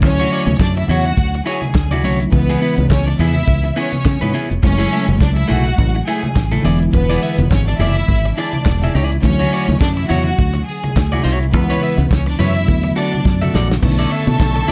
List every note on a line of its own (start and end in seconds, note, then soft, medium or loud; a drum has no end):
0.00 0.25 D2 medium
0.00 1.99 D3 medium
0.00 1.99 F#3 medium
0.00 1.99 A3 medium
0.00 0.57 C#4 loud
0.00 2.00 C#4 medium
0.00 2.00 E4 medium
0.00 0.57 C#5 loud
0.00 muted clean electric guitar stroke soft
0.00 kick loud
0.00 closed hi-hat medium
0.00 muted conga soft
0.00 low conga medium
0.18 0.30 E4 medium
0.18 0.31 F#4 medium
0.18 0.32 C#5 medium
0.18 closed hi-hat soft
0.18 muted conga soft
0.31 0.47 E4 medium
0.31 0.47 F#4 medium
0.31 0.47 D5 medium
0.31 open hi-hat medium
0.46 0.57 D2 loud
0.46 muted clean electric guitar stroke soft
0.46 closed hi-hat soft
0.46 high conga medium
0.60 0.82 F#2 loud
0.60 0.73 D4 medium
0.60 0.73 D5 loud
0.60 kick loud
0.60 snare loud
0.60 clap medium
0.60 closed hi-hat medium
0.75 0.87 E4 medium
0.75 0.87 E5 medium
0.75 muted clean electric guitar stroke soft
0.75 closed hi-hat soft
0.75 muted conga soft
0.88 1.11 E2 medium
0.88 1.09 E4 medium
0.88 1.43 F#4 loud
0.88 1.05 F#4 medium
0.88 1.04 C#5 medium
0.88 1.43 F#5 loud
0.88 open hi-hat medium
0.88 high conga medium
0.88 low conga medium
1.05 muted clean electric guitar stroke medium
1.05 closed hi-hat soft
1.17 1.40 D2 loud
1.17 kick loud
1.17 closed hi-hat soft
1.34 muted clean electric guitar stroke soft
1.34 closed hi-hat soft
1.45 1.66 E4 medium
1.45 1.62 F#4 medium
1.45 2.00 G#4 medium
1.45 1.61 C#5 medium
1.45 2.00 G#5 medium
1.45 open hi-hat medium
1.62 muted clean electric guitar stroke soft
1.62 closed hi-hat soft
1.62 high conga medium
1.74 2.04 D2 loud
1.74 muted clean electric guitar stroke soft
1.74 kick loud
1.74 snare loud
1.74 clap medium
1.74 closed hi-hat medium
1.74 muted conga soft
1.91 2.03 E4 soft
1.91 2.03 F#4 medium
1.91 2.04 D5 medium
1.91 closed hi-hat soft
1.91 high conga medium
2.03 2.26 C2 medium
2.03 2.32 D3 medium
2.03 2.32 F#3 medium
2.03 2.32 A3 medium
2.03 2.33 C#4 medium
2.03 2.33 E4 medium
2.03 2.23 E4 medium
2.03 2.20 F#4 medium
2.03 2.19 C#5 medium
2.03 open hi-hat medium
2.20 muted clean electric guitar stroke soft
2.20 closed hi-hat soft
2.31 2.55 C#2 medium
2.31 4.58 C#3 medium
2.31 4.58 E3 medium
2.31 4.59 G#3 medium
2.31 2.86 B3 loud
2.31 4.59 B3 medium
2.31 4.60 E4 medium
2.31 2.86 B4 loud
2.31 muted clean electric guitar stroke soft
2.31 kick loud
2.31 closed hi-hat medium
2.31 muted conga soft
2.31 low conga medium
2.49 2.60 B3 medium
2.49 2.61 E4 medium
2.49 2.62 G#4 medium
2.49 closed hi-hat soft
2.49 muted conga soft
2.61 2.77 B3 medium
2.61 2.77 E4 medium
2.61 2.77 B4 medium
2.61 open hi-hat medium
2.77 2.88 C#2 medium
2.77 muted clean electric guitar stroke medium
2.77 closed hi-hat soft
2.77 high conga medium
2.89 3.13 C#2 medium
2.89 3.03 C#4 medium
2.89 3.03 C#5 medium
2.89 kick loud
2.89 snare loud
2.89 clap medium
2.89 closed hi-hat medium
2.89 muted conga soft
3.06 3.16 D4 medium
3.06 3.16 D5 medium
3.06 muted clean electric guitar stroke soft
3.06 closed hi-hat soft
3.19 3.41 E2 medium
3.19 3.39 B3 medium
3.19 3.73 E4 medium
3.19 3.36 E4 medium
3.19 3.35 G#4 medium
3.19 3.74 E5 loud
3.19 open hi-hat medium
3.19 high conga medium
3.19 low conga medium
3.35 muted clean electric guitar stroke soft
3.35 closed hi-hat soft
3.35 high conga medium
3.47 3.70 C#2 loud
3.47 kick loud
3.47 closed hi-hat soft
3.47 muted conga soft
3.64 muted clean electric guitar stroke soft
3.64 closed hi-hat soft
3.64 muted conga soft
3.76 3.96 B3 medium
3.76 4.31 C#4 medium
3.76 3.92 E4 medium
3.76 3.91 G#4 medium
3.76 4.31 C#5 medium
3.76 open hi-hat medium
3.92 muted clean electric guitar stroke soft
3.92 closed hi-hat soft
3.92 high conga medium
4.05 4.18 C#3 loud
4.05 muted clean electric guitar stroke soft
4.05 kick loud
4.05 snare loud
4.05 clap medium
4.05 closed hi-hat medium
4.05 muted conga soft
4.21 4.32 G#2 medium
4.21 4.32 B3 medium
4.21 4.33 E4 medium
4.21 4.34 B4 medium
4.21 closed hi-hat soft
4.21 high conga medium
4.34 4.53 B3 medium
4.34 4.49 E4 medium
4.34 4.49 G#4 medium
4.34 open hi-hat medium
4.50 4.60 F1 medium
4.50 muted clean electric guitar stroke soft
4.50 closed hi-hat soft
4.62 4.85 F#1 loud
4.62 6.60 C#3 medium
4.62 6.61 F#3 medium
4.62 6.61 G#3 medium
4.62 6.62 A3 medium
4.62 5.18 C#4 loud
4.62 6.62 E4 medium
4.62 5.18 C#5 loud
4.62 muted clean electric guitar stroke soft
4.62 kick loud
4.62 closed hi-hat medium
4.62 muted conga soft
4.62 low conga medium
4.78 4.91 A3 medium
4.78 4.91 E4 medium
4.78 4.93 G#4 medium
4.78 closed hi-hat soft
4.92 5.08 A3 medium
4.92 5.07 E4 medium
4.92 5.07 A4 medium
4.92 open hi-hat medium
5.08 5.18 F#1 medium
5.08 muted clean electric guitar stroke soft
5.08 closed hi-hat soft
5.08 high conga medium
5.20 5.43 C#2 medium
5.20 5.33 D4 medium
5.20 5.33 D5 medium
5.20 kick loud
5.20 snare medium
5.20 clap medium
5.20 closed hi-hat medium
5.20 muted conga soft
5.36 5.46 E4 medium
5.36 5.46 E5 loud
5.36 muted clean electric guitar stroke medium
5.36 closed hi-hat soft
5.36 muted conga soft
5.48 5.72 B1 medium
5.48 5.68 A3 medium
5.48 5.65 E4 medium
5.48 6.03 F#4 loud
5.48 5.64 G#4 medium
5.48 6.03 F#5 loud
5.48 open hi-hat medium
5.48 high conga medium
5.48 low conga medium
5.65 muted clean electric guitar stroke soft
5.65 closed hi-hat soft
5.78 6.01 A1 loud
5.78 kick loud
5.78 closed hi-hat medium
5.78 muted conga soft
5.95 muted clean electric guitar stroke soft
5.95 closed hi-hat soft
6.06 6.27 A3 medium
6.06 6.23 E4 medium
6.06 6.61 G#4 medium
6.06 6.22 G#4 medium
6.06 6.61 G#5 medium
6.06 open hi-hat medium
6.23 muted clean electric guitar stroke soft
6.23 closed hi-hat soft
6.23 high conga medium
6.35 6.58 A1 medium
6.35 muted clean electric guitar stroke soft
6.35 kick loud
6.35 snare loud
6.35 clap medium
6.35 closed hi-hat medium
6.52 6.65 A3 soft
6.52 6.63 E4 medium
6.52 6.64 A4 medium
6.52 closed hi-hat soft
6.52 muted conga soft
6.52 high conga medium
6.63 6.87 E1 medium
6.63 8.90 D3 medium
6.63 8.90 E3 medium
6.63 8.91 G#3 medium
6.63 8.91 B3 medium
6.63 6.84 E4 medium
6.63 8.92 E4 medium
6.63 6.80 G#4 medium
6.63 6.79 D5 medium
6.63 open hi-hat medium
6.80 muted clean electric guitar stroke soft
6.80 closed hi-hat soft
6.92 7.16 E1 loud
6.92 7.47 B3 loud
6.92 7.47 B4 loud
6.92 muted clean electric guitar stroke soft
6.92 kick loud
6.92 closed hi-hat medium
6.92 low conga medium
7.10 7.21 E4 medium
7.10 7.21 G#4 medium
7.10 7.23 D5 medium
7.10 closed hi-hat soft
7.10 muted conga soft
7.22 7.38 E4 medium
7.22 7.38 G#4 medium
7.22 7.38 E5 medium
7.22 open hi-hat medium
7.38 7.48 E1 medium
7.38 muted clean electric guitar stroke soft
7.38 closed hi-hat soft
7.38 high conga medium
7.50 7.73 G#1 medium
7.50 7.64 C#4 medium
7.50 7.64 C#5 medium
7.50 kick loud
7.50 snare loud
7.50 clap medium
7.50 closed hi-hat medium
7.67 7.77 D4 medium
7.67 7.77 D5 medium
7.67 muted clean electric guitar stroke soft
7.67 closed hi-hat soft
7.67 muted conga soft
7.78 8.02 F#1 medium
7.78 8.33 E4 loud
7.78 7.99 E4 medium
7.78 7.96 G#4 medium
7.78 7.96 D5 medium
7.78 8.33 E5 loud
7.78 open hi-hat medium
7.78 high conga medium
7.78 low conga medium
7.96 muted clean electric guitar stroke soft
7.96 closed hi-hat soft
8.09 8.31 G#1 medium
8.09 kick loud
8.09 closed hi-hat soft
8.25 muted clean electric guitar stroke soft
8.25 closed hi-hat soft
8.25 muted conga soft
8.36 8.91 D4 medium
8.36 8.57 E4 medium
8.36 8.53 G#4 medium
8.36 8.91 D5 medium
8.36 8.52 D5 medium
8.36 open hi-hat medium
8.53 muted clean electric guitar stroke soft
8.53 closed hi-hat soft
8.53 high conga medium
8.65 8.88 E1 medium
8.65 muted clean electric guitar stroke soft
8.65 kick loud
8.65 snare loud
8.65 clap medium
8.65 closed hi-hat medium
8.65 muted conga soft
8.82 8.94 E4 soft
8.82 8.94 G#4 soft
8.82 8.96 E5 medium
8.82 closed hi-hat soft
8.82 muted conga soft
8.82 high conga medium
8.95 9.17 C#2 medium
8.95 9.16 E4 medium
8.95 9.11 G#4 medium
8.95 9.11 D5 medium
8.95 open hi-hat medium
9.12 muted clean electric guitar stroke soft
9.12 closed hi-hat soft
9.22 9.46 D2 loud
9.22 11.49 D3 medium
9.22 9.30 E3 medium
9.22 11.49 A3 medium
9.22 9.77 C#4 loud
9.22 11.50 C#4 medium
9.22 11.50 E4 medium
9.22 9.77 C#5 loud
9.22 muted clean electric guitar stroke soft
9.22 kick loud
9.22 closed hi-hat medium
9.22 low conga medium
9.29 11.52 F#3 medium
9.39 9.51 E4 medium
9.39 9.52 F#4 medium
9.39 9.53 C#5 loud
9.39 closed hi-hat soft
9.39 muted conga soft
9.52 9.68 E4 medium
9.52 9.67 F#4 medium
9.52 9.67 D5 medium
9.52 open hi-hat medium
9.68 9.78 D2 medium
9.68 muted clean electric guitar stroke soft
9.68 closed hi-hat soft
9.68 high conga medium
9.81 10.03 F#2 loud
9.81 9.94 D4 loud
9.81 9.94 D5 medium
9.81 kick loud
9.81 snare medium
9.81 clap medium
9.81 closed hi-hat medium
9.81 muted conga soft
9.95 10.06 E4 medium
9.95 10.06 E5 medium
9.95 muted clean electric guitar stroke soft
9.95 closed hi-hat soft
9.95 muted conga soft
10.07 10.32 E2 medium
10.07 10.29 E4 medium
10.07 10.63 F#4 loud
10.07 10.25 F#4 medium
10.07 10.24 C#5 medium
10.07 10.63 F#5 loud
10.07 open hi-hat medium
10.07 high conga medium
10.07 low conga medium
10.25 muted clean electric guitar stroke soft
10.25 closed hi-hat soft
10.39 10.61 D2 medium
10.39 muted clean electric guitar stroke soft
10.39 kick loud
10.39 closed hi-hat soft
10.39 muted conga soft
10.54 muted clean electric guitar stroke medium
10.54 closed hi-hat soft
10.54 muted conga soft
10.66 11.21 G#4 medium
10.66 11.21 G#5 medium
10.66 open hi-hat medium
10.84 muted clean electric guitar stroke soft
10.84 closed hi-hat soft
10.84 high conga medium
10.96 11.19 D2 medium
10.96 muted clean electric guitar stroke soft
10.96 kick loud
10.96 snare loud
10.96 clap medium
10.96 closed hi-hat medium
10.96 muted conga soft
11.12 11.22 E4 soft
11.12 11.23 F#4 medium
11.12 11.24 D5 medium
11.12 closed hi-hat soft
11.12 muted conga soft
11.12 high conga medium
11.23 11.54 C2 medium
11.23 11.45 E4 medium
11.23 11.39 F#4 medium
11.23 11.39 C#5 medium
11.23 snare soft
11.23 open hi-hat medium
11.40 muted clean electric guitar stroke soft
11.40 closed hi-hat soft
11.52 11.76 C#2 loud
11.52 12.65 C#3 medium
11.52 12.66 E3 medium
11.52 12.66 G#3 medium
11.52 12.07 B3 loud
11.52 12.66 B3 medium
11.52 12.67 E4 medium
11.52 12.07 B4 loud
11.52 muted clean electric guitar stroke soft
11.52 kick loud
11.52 closed hi-hat medium
11.52 muted conga soft
11.52 low conga medium
11.70 11.80 E4 medium
11.70 11.81 B4 medium
11.70 11.83 C#5 medium
11.70 closed hi-hat soft
11.70 muted conga soft
11.81 11.98 E4 medium
11.81 11.97 B4 medium
11.81 11.97 E5 medium
11.81 open hi-hat medium
11.98 12.08 C#2 loud
11.98 muted clean electric guitar stroke medium
11.98 closed hi-hat soft
11.98 high conga medium
12.11 12.33 C#2 medium
12.11 12.24 C#4 medium
12.11 12.24 C#5 medium
12.11 kick loud
12.11 snare loud
12.11 clap medium
12.11 closed hi-hat medium
12.26 12.37 D4 medium
12.26 12.38 D5 medium
12.26 muted clean electric guitar stroke medium
12.26 closed hi-hat soft
12.39 12.68 F#2 medium
12.39 12.59 E4 medium
12.39 12.94 E4 medium
12.39 12.55 B4 medium
12.39 12.54 C#5 medium
12.39 12.94 E5 loud
12.39 open hi-hat medium
12.39 high conga medium
12.39 low conga medium
12.55 muted clean electric guitar stroke medium
12.55 closed hi-hat soft
12.55 high conga soft
12.66 12.91 E2 loud
12.66 13.80 D3 medium
12.66 13.80 F#3 medium
12.66 13.81 A3 medium
12.66 13.81 B3 medium
12.66 13.81 E4 medium
12.66 kick loud
12.66 closed hi-hat soft
12.66 muted conga soft
12.84 muted clean electric guitar stroke medium
12.84 closed hi-hat soft
12.84 muted conga soft
12.96 13.51 D4 medium
12.96 13.16 F#4 medium
12.96 13.12 A4 medium
12.96 13.12 D5 medium
12.96 13.51 D5 medium
12.96 open hi-hat medium
13.13 muted clean electric guitar stroke soft
13.13 closed hi-hat soft
13.13 high conga medium
13.25 13.48 F#2 medium
13.25 muted clean electric guitar stroke soft
13.25 kick loud
13.25 snare medium
13.25 muted conga soft
13.42 13.53 F#4 soft
13.42 13.54 A4 medium
13.42 13.54 E5 medium
13.42 muted conga soft
13.42 high conga medium
13.54 13.77 A#1 medium
13.54 13.74 F#4 medium
13.54 13.69 A4 medium
13.54 13.68 D5 medium
13.54 snare medium
13.54 low conga medium
13.70 muted clean electric guitar stroke soft
13.70 snare medium
13.81 14.05 B1 loud
13.81 13.89 C#3 medium
13.81 14.72 D3 medium
13.81 14.72 A3 medium
13.81 14.72 B3 medium
13.81 14.72 C#4 medium
13.81 14.72 E4 medium
13.81 14.72 A4 medium
13.81 14.72 A4 loud
13.81 14.72 E5 medium
13.81 14.72 A5 loud
13.81 14.72 C#6 medium
13.81 muted clean electric guitar stroke soft
13.81 kick loud
13.81 crash loud
13.81 muted conga soft
13.81 low conga medium
13.87 14.72 D3 medium
13.99 14.10 E4 medium
13.99 14.10 A4 medium
13.99 14.12 D5 medium
13.99 muted conga soft
14.11 14.27 E4 medium
14.11 14.27 A4 medium
14.11 14.27 E5 medium
14.11 open hi-hat medium
14.27 14.37 B2 loud
14.27 muted clean electric guitar stroke soft
14.27 closed hi-hat soft
14.27 high conga medium
14.40 14.62 B1 loud
14.40 kick loud
14.40 snare loud
14.40 clap medium
14.40 closed hi-hat medium
14.56 muted clean electric guitar stroke soft
14.56 muted conga soft
14.68 14.72 E4 medium
14.68 14.72 A4 medium
14.68 high conga medium
14.68 low conga medium